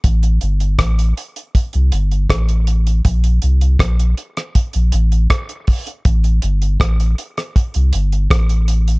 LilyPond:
<<
  \new Staff \with { instrumentName = "Sub bass" } { \clef bass \time 4/4 \key a \phrygian \tempo 4 = 80 a,,8 g,,8 a,,8 r8. c,16 g,,8 a,,4 | bes,,8 c,8 bes,,8 r8. bes,,16 a,,8 r4 | a,,8 g,,8 a,,8 r8. c,16 g,,8 a,,4 | }
  \new DrumStaff \with { instrumentName = "Drums" } \drummode { \time 4/4 <hh bd>16 hh16 hh16 hh16 <hh bd ss>16 hh16 hh16 hh16 <hh bd>16 hh16 hh16 hh16 <hh bd ss>16 hh16 hh16 hh16 | <hh bd>16 hh16 hh16 hh16 <hh bd ss>16 hh16 hh16 <hh ss>16 <hh bd>16 hh16 hh16 hh16 <hh bd ss>16 hh16 <hho bd>16 hh16 | <hh bd>16 hh16 hh16 hh16 <hh bd ss>16 hh16 hh16 <hh ss>16 <hh bd>16 hh16 hh16 hh16 <hh bd ss>16 hh16 hh16 hh16 | }
>>